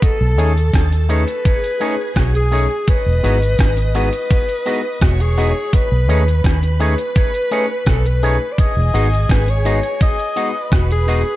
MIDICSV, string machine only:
0, 0, Header, 1, 2, 480
1, 0, Start_track
1, 0, Key_signature, 4, "major"
1, 0, Tempo, 713436
1, 16, Time_signature, 4, 2, 24, 8
1, 7644, End_track
2, 0, Start_track
2, 0, Title_t, "String machine"
2, 0, Program_c, 0, 50
2, 14, Note_on_c, 0, 69, 96
2, 15, Note_on_c, 0, 81, 96
2, 956, Note_off_c, 0, 69, 0
2, 957, Note_off_c, 0, 81, 0
2, 979, Note_on_c, 0, 68, 90
2, 979, Note_on_c, 0, 80, 98
2, 1918, Note_off_c, 0, 68, 0
2, 1919, Note_off_c, 0, 80, 0
2, 1933, Note_on_c, 0, 87, 99
2, 1936, Note_on_c, 0, 75, 91
2, 3348, Note_off_c, 0, 87, 0
2, 3349, Note_off_c, 0, 75, 0
2, 3376, Note_on_c, 0, 73, 82
2, 3376, Note_on_c, 0, 85, 91
2, 3846, Note_off_c, 0, 85, 0
2, 3847, Note_off_c, 0, 73, 0
2, 3858, Note_on_c, 0, 71, 98
2, 3858, Note_on_c, 0, 83, 102
2, 5749, Note_off_c, 0, 71, 0
2, 5749, Note_off_c, 0, 83, 0
2, 5776, Note_on_c, 0, 80, 98
2, 5777, Note_on_c, 0, 68, 94
2, 6950, Note_off_c, 0, 80, 0
2, 6951, Note_off_c, 0, 68, 0
2, 6973, Note_on_c, 0, 71, 85
2, 6973, Note_on_c, 0, 83, 102
2, 7644, Note_off_c, 0, 71, 0
2, 7644, Note_off_c, 0, 83, 0
2, 7644, End_track
0, 0, End_of_file